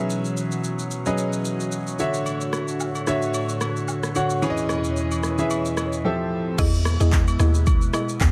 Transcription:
Already playing: B2 E3 F#3 C#4 F#4 G#4 B4 C#5 E5
0.10 shaker
0.25 shaker
0.37 shaker
0.52 shaker
0.64 shaker
0.79 shaker
0.91 shaker
1.06 F#3 C#4 G#4 B4 D#5, shaker
1.18 shaker
1.33 shaker
1.45 shaker
1.60 shaker
1.72 shaker
1.87 shaker
1.99 A2 D3 D4 F#4 C#5 E5, shaker
2.14 shaker
2.26 high agogo, shaker
2.41 shaker
2.53 cross-stick, high agogo, shaker
2.68 shaker
2.80 low woodblock, shaker
2.95 high agogo, shaker
3.07 D3 D4 F#4 C#5 E5, cross-stick, shaker
3.22 shaker
3.34 high agogo, shaker
3.49 shaker
3.61 cross-stick, high agogo, shaker
3.76 shaker
3.88 low woodblock, shaker
4.03 cross-stick, shaker
4.15 D3 D4 F#4 C#5 F#5, high agogo, shaker
4.30 shaker
4.42 E2 B2 E3 C#4 E4 G#4 B4 C#5, high agogo, shaker
4.50 D#5
4.57 shaker
4.69 cross-stick, high agogo, shaker
4.84 shaker
4.97 shaker
5.11 high agogo, shaker
5.23 cross-stick, shaker
5.38 E3 C#4 G#4 B4 E5, shaker
5.50 high agogo, shaker
5.65 shaker
5.77 cross-stick, high agogo, shaker
5.93 shaker
6.04 A2 F3 C4 E4 G4 A4 E5
6.58 E2 B2 G#3 B3 E4 G#4 D#5, kick, crash, high agogo, shaker
6.74 shaker
6.85 cross-stick, high agogo, shaker
7.00 E2 E4 G#4 D#5, shaker
7.12 kick, clap, shaker
7.28 high agogo, shaker
7.39 D#2 E4 G#4 D#5, cross-stick, shaker
7.55 shaker
7.67 kick, high agogo, shaker
7.82 shaker
7.93 E4 G#4 D#5, cross-stick, high agogo, shaker
8.09 shaker
8.21 E2, kick, clap, low woodblock, shaker

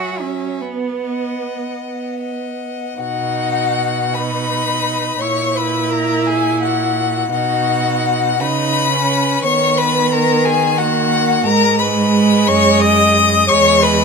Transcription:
Already playing: F#3 F#4 E5 G#5
0.21 C#4
0.61 B3
1.02 D#5 F#5
1.81 B3
2.21 D#5 F#5
2.98 B2 D#4 F#4 F#5
4.14 D#4 B4 B5
5.20 A#2 E4 C#5 C#6
5.56 B4 B5
5.90 A#4 A#5
6.26 G#4 G#5
6.62 F#4 F#5
7.31 B2 D#4 F#4 F#5
8.40 C#3 D#4 B4 B5
8.92 C#4
9.43 D#3 B3 C#5 C#6
9.78 B4 B5
10.12 A#4 A#5
10.45 G#4 G#5
10.78 A#3 F#4 F#5
11.45 G#2 G#3 A#4 A#5
11.79 B4 B5
12.47 F#2 C#5 C#6
12.80 D#5 D#6
13.48 E2 G#3 C#5 C#6
13.82 B4 B5

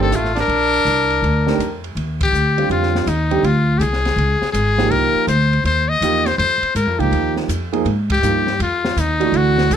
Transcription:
Already playing: G1
0.00 D#3 A3 C4 D4 G4 A4
0.11 A1 A3, hi-hat pedal, ride
0.15 F4
0.25 snare
0.35 D4, snare, ride
0.40 A#4
0.48 A#1, ride
0.74 ride
0.85 C2, hi-hat pedal, ride
1.10 ride
1.22 D2, ride
1.46 D#3 A3 D4 G4, snare
1.58 F2, hi-hat pedal, ride
1.84 ride
1.95 D#2, ride
2.21 G4, kick, ride
2.32 D2, hi-hat pedal
2.58 D3 G3 C4 F4, ride
2.69 F2 F4, ride
2.83 snare
2.95 snare
3.06 D#2 D#4, hi-hat pedal, ride
3.31 D3 G3 C4 G4, ride
3.43 D2 F4, ride
3.78 C2 G4 G#4, hi-hat pedal, ride
3.93 snare
4.05 snare, ride
4.16 C#2, ride
4.42 snare
4.52 G#1 G#4, hi-hat pedal, ride
4.78 F3 A#3 D#4 G4, snare
4.91 C2 A#4, ride
5.15 muted upright bass stroke
5.27 D2 C5, hi-hat pedal, ride
5.53 ride
5.64 D#2 C5, ride
5.89 D#5
6.01 E2 F3 A#3 D#4 G4, hi-hat pedal, ride
6.26 C5, snare, ride
6.38 F2 C5, ride
6.62 muted upright bass stroke, ride
6.75 G#2 A#4, hi-hat pedal, ride
6.87 F2
6.99 C#2 F3 A#3 D#4 G4, kick, ride
7.11 D#2, ride
7.37 snare
7.48 F2, hi-hat pedal, ride
7.72 F3 A#3 D#4 G#4, ride
7.85 G#2, ride
8.10 G4, kick, ride
8.22 G2 F3 A#3 D#4 G4, hi-hat pedal
8.47 snare
8.59 F2 F4, ride
8.85 snare
8.96 D#2 D#4, hi-hat pedal, ride
9.20 E3 A3 D4 F#4, ride
9.32 D2, ride
9.37 F#4
9.58 snare
9.70 C2, hi-hat pedal, ride

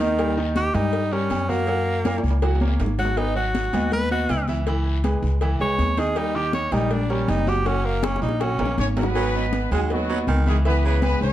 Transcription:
Already playing: D#2
0.00 D#3 D#4 D#5, cowbell, low agogo, short guiro
0.18 G3 G4 A#4, cowbell, high conga, low agogo, long guiro
0.37 D#3 D#4 D#5, high conga
0.56 G4, cowbell, high conga, low agogo, short guiro
0.74 G2 G3 D#4 G4 A#4, cowbell, high conga, low conga, low agogo, short guiro
0.93 cowbell, high conga, long guiro
1.12 G3 C#4 G4 A#4, high conga, low agogo
1.30 F#2, cowbell, high conga, low agogo, short guiro
1.49 F#3 A#3 F#4 F#5, high conga, short guiro
1.67 F#3 F#4 F#5, cowbell, high conga, low agogo, long guiro
1.86 high conga
2.05 A#3 A#4 C#5, cowbell, high conga, high timbale, low agogo, short guiro
2.18 high timbale
2.23 C#2, high conga, short guiro
2.31 high timbale
2.42 F#3 F#4 F#5, cowbell, high conga, high timbale, low agogo, long guiro
2.55 low timbale
2.61 A#3 A#4 C#5, high conga, low agogo
2.67 low timbale
2.79 G#1, cowbell, low timbale, short guiro
2.86 low conga
2.99 F#3 F#4 F#5, cowbell, low conga, low agogo, short guiro
3.05 low timbale
3.17 B3 D#4 B4 D#5, cowbell, low agogo, long guiro
3.35 F#3 F#4 F#5, high conga
3.55 cowbell, high conga, low agogo, short guiro
3.73 D#2 B3 B4 D#5, cowbell, high conga, low conga, low agogo, short guiro
3.92 B4, cowbell, high conga, low conga, long guiro
4.11 B3 F#4 B4 D#5, high conga, low agogo
4.29 C#2, cowbell, high conga, low agogo, short guiro
4.48 E3 E4 E5, high conga, short guiro
4.66 E3 E4 E5, cowbell, high conga, low agogo, long guiro
4.86 high conga
5.04 G#3 G#4 B4, cowbell, high conga, low agogo, short guiro
5.22 C#2, high conga, short guiro
5.41 E3 E4 E5, cowbell, high conga, low agogo, long guiro
5.60 C#2 G#3 G#4 B4 C#5, high conga, low agogo
5.78 D#2, cowbell, high conga, short guiro
5.97 D#3 D#4 G#4 D#5, cowbell, high conga, low agogo, short guiro
6.16 G3 D#4 G4 A#4, cowbell, high conga, low agogo, long guiro
6.35 D#3 D#4 G4 D#5, high conga
6.53 C#5, cowbell, high conga, low agogo, short guiro
6.72 A#1 G3 D#4 G4 A#4, cowbell, high conga, low conga, low agogo, short guiro
6.91 D4, cowbell, high conga, low conga, long guiro
7.09 G3 C#4 G4 A#4, high conga, low agogo
7.28 F#1 D#4, cowbell, high conga, low agogo, short guiro
7.47 F#3 F#4 G4 F#5, high conga, short guiro
7.66 F#3 C#4 F#4 F#5, cowbell, low agogo, long guiro
7.84 A#3, high conga
8.03 A#3 C#4 A#4 C#5, cowbell, high bongo, high conga, low agogo, short guiro
8.16 high bongo
8.22 A#1 D#4, high conga, high timbale, short guiro
8.29 high bongo
8.40 F#3 C#4 F#4 F#5, cowbell, high bongo, high conga, low agogo, long guiro
8.59 A#1 A#3 A#4 C#5, high conga, low timbale, low agogo
8.66 low bongo
8.78 G#1 C#4 C#5, cowbell, high conga, short guiro
8.97 F#3 B3 F#4 B4 F#5, cowbell, high conga, low timbale, low agogo, short guiro
9.03 low bongo
9.10 low timbale
9.15 F#3, cowbell, high conga, low agogo, long guiro
9.34 B3 B4 D#5, high conga
9.53 cowbell, high conga, low agogo, short guiro
9.71 D#2 F#3 G#3 F#4 G#4 F#5, cowbell, high conga, low conga, low agogo, short guiro
9.90 F#3 B3 F#4 B4 D#5, cowbell, high conga, long guiro
10.09 F#3 B3 B4 D#5, high conga, low agogo
10.27 C#2 D#3, cowbell, high conga, low timbale, low agogo, short guiro
10.46 E3 G#3 E4 G#4 E5, high conga, short guiro
10.65 E3 B3 E4 B4 E5, cowbell, high conga, low agogo, long guiro
10.84 C#3 B3 B4, high conga
11.02 G#3 B3 G#4 B4, cowbell, high conga, low agogo, short guiro
11.21 C#2 C#4 C#5, high conga, short guiro

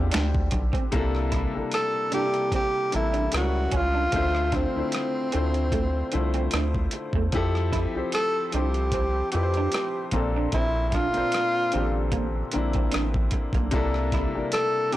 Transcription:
Already playing: E2 D3 C4 D4 E4 F4 G4
0.11 D2 D4, finger snap, snare, closed hi-hat
0.35 kick
0.51 B1, muted clean electric guitar stroke, kick, closed hi-hat
0.73 C4, kick, closed hi-hat
0.92 C2 C3 G3 A#3 D4 E4, kick, closed hi-hat
0.96 A4
1.15 cross-stick
1.32 E4, kick, cross-stick, closed hi-hat
1.54 A1 C3 G3 A#3 D4 E4
1.58 A4
1.72 A4, cross-stick, closed hi-hat
2.11 C3 G3 A#3 D4 E4 G4, closed hi-hat
2.16 A4
2.34 closed hi-hat
2.52 C4 G4, kick, closed hi-hat
2.92 A1 C3 G3 A#3 D4 E4 A4, muted clean electric guitar stroke, closed hi-hat
3.13 D4, closed hi-hat
3.32 C#2 C#3 G3 E4 A#4, muted clean electric guitar stroke, cross-stick, closed hi-hat
3.36 F#4 C#5
3.71 C#2 C#4, kick, closed hi-hat
3.77 F4
3.94 D4
4.12 D2 D3 A3 C4 F4 C5 E5, kick, closed hi-hat
4.35 cross-stick
4.52 C4 D4, kick, cross-stick, closed hi-hat
4.74 D2 D3 A3 E4 F4
4.79 C5
4.92 cross-stick, closed hi-hat
5.32 D2 D3 A3 C4 E4 F4, closed hi-hat
5.37 C5
5.54 closed hi-hat
5.72 A3, kick, closed hi-hat
6.12 C2 D3 A3 E4 F4 C5, muted clean electric guitar stroke, closed hi-hat
6.34 C4, closed hi-hat
6.51 D2 D4, cross-stick, closed hi-hat
6.75 kick
6.91 muted clean electric guitar stroke, closed hi-hat
7.13 E2 A3, kick
7.32 F2 F3 C4 E4 G4, kick, closed hi-hat
7.37 A4
7.55 cross-stick
7.73 E4, kick, cross-stick, closed hi-hat
7.94 C2 F3 C4 E4 G4 C5
8.12 A4, cross-stick, closed hi-hat
8.47 A4
8.52 C2 F3 C4 D4 E4 G4, closed hi-hat
8.56 C5
8.74 closed hi-hat
8.92 C4, kick, closed hi-hat
9.32 F2 F3 C4 E4 G4, muted clean electric guitar stroke, closed hi-hat
9.36 B4
9.43 C5
9.54 D4, closed hi-hat
9.72 muted clean electric guitar stroke, cross-stick, closed hi-hat
10.11 A#1 A#2 A#3 C4 D4, kick, closed hi-hat
10.16 A4
10.36 D4
10.52 A#1 C4 E4, kick, closed hi-hat
10.89 E4, kick, closed hi-hat
10.94 D4 F4, cross-stick
11.13 A#2 A#3 C4 D4, closed hi-hat
11.17 A1 C5
11.32 cross-stick, closed hi-hat
11.72 A1 D3 A#3 C4 D4, closed hi-hat
11.77 G4
11.83 A4
12.12 A#3, kick, closed hi-hat
12.52 D3 A#3 C4, muted clean electric guitar stroke, closed hi-hat
12.56 A#1 D4 E4
12.73 C4, kick, closed hi-hat
12.92 A1 D4, cross-stick, closed hi-hat
13.14 kick
13.31 muted clean electric guitar stroke, kick, closed hi-hat
13.53 B1 A#3, kick, closed hi-hat
13.71 C2 C3 G3 A#3 D4 E4, kick, closed hi-hat
13.76 A4
13.94 cross-stick
14.12 E4, kick, cross-stick, closed hi-hat
14.34 A1 C3 G3 A#3 D4 E4
14.38 A#4
14.52 A4, cross-stick, closed hi-hat
14.92 C3 G3 A#3 D4 G4, closed hi-hat

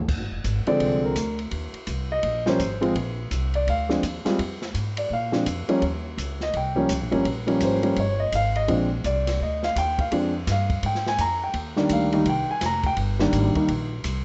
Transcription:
0.08 A#1, kick, crash
0.20 G#1
0.32 F1
0.44 G#1, kick, hi-hat pedal, ride
0.66 D3 F3 G#3 C4 D5, muted upright bass stroke, ride
0.80 C2, kick, ride
1.04 A#4
1.16 D2, kick, hi-hat pedal, ride
1.39 ride
1.51 D#2, kick, ride
1.73 muted upright bass stroke, ride
1.87 C2, kick, hi-hat pedal, ride
2.12 D#5
2.23 A#1, kick, ride
2.46 F3 G3 A#3 C#4 C5, snare
2.59 G#1, kick, hi-hat pedal, ride
2.81 F3 G#3 C4 F4, ride
2.95 A#1, kick, ride
3.31 C2, kick, hi-hat pedal, ride
3.54 D5, ride
3.67 D2 F5, kick, ride
3.89 F3 G#3 C4 D4, snare
4.03 D#2, kick, hi-hat pedal, ride
4.25 G3 G#3 C4 F4, muted upright bass stroke, snare, ride
4.39 F2, kick, ride
4.62 snare
4.74 G#2, kick, hi-hat pedal, ride
4.97 D5, ride
5.10 A#2 F5, kick
5.32 F3 G#3 C4 D4, snare
5.46 F2, kick, hi-hat pedal, ride
5.68 F3 G3 A#3 C#4, muted upright bass stroke, ride
5.82 D#2, kick, ride
6.17 C#2, kick, hi-hat pedal, ride
6.41 D#5, snare
6.54 C2 G5, kick, ride
6.75 F3 G3 A#3 C#4
6.89 C#2, kick, hi-hat pedal, ride
7.01 A#1
7.11 G1 F3 G3 A#3 C#4, ride
7.25 A#1, kick, ride
7.47 F3 G3 A#3 C#4, ride
7.60 G#1 C5, kick, hi-hat pedal, ride
7.82 F3 G3 A#3 C#4, ride
7.96 G1 C#5, kick, ride
8.20 D#5
8.32 G#1 F5, kick, hi-hat pedal, ride
8.55 D#5, ride
8.68 A#1 F3 G#3 C4 D4, kick, ride
9.04 C2 D5, kick, hi-hat pedal, ride
9.27 snare, ride
9.40 D2 D#5, kick
9.63 F5, snare
9.76 D#2 G5, kick, hi-hat pedal, ride
9.99 F5, kick, ride
10.11 F2 F3 G#3 C4 D4, kick, ride
10.47 G2, kick, snare, hi-hat pedal, ride
10.52 F5
10.70 kick, ride
10.83 G#2 G5, kick, ride
10.95 snare
11.07 G#5, snare
11.18 F2 A#5, kick, hi-hat pedal, ride
11.44 G5
11.54 D#2, kick, ride
11.76 D#3 G3 A#3 D4, snare
11.89 D2 F5, kick, hi-hat pedal, ride
12.12 D#3 G3 A#3 D#4, ride
12.26 C2 G5, kick, ride
12.48 G#5, muted upright bass stroke
12.61 F1, kick, snare, hi-hat pedal, ride
12.66 A#5
12.83 G5, kick, ride
12.97 G1, kick, ride
13.19 D#3 G3 A#3 D4, snare
13.33 G#1, kick, hi-hat pedal, ride
13.55 D#3 G3 A#3 D#4, muted upright bass stroke, kick, ride
13.68 A#1, kick, ride
14.04 C2, kick, hi-hat pedal, ride

